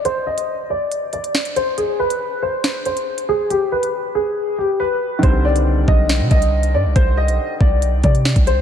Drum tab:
HH |x--x----x-xx-xx-|x--x----x-xx-x--|x--x------------|x--x----x-xx-x--|
SD |------------o---|--------o-------|----------------|--------o-------|
BD |----------------|----------------|----------------|o-----o---o-----|

HH |x--x----x-xx-xx-|
SD |------------o---|
BD |o-----o---o--o--|